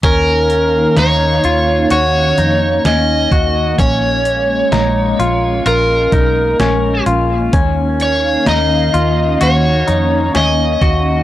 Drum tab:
HH |xxxxxxxx|xxxxxxxx|xxxxxxxx|
SD |--o---o-|--o---o-|--o---o-|
BD |o------o|o----o--|o------o|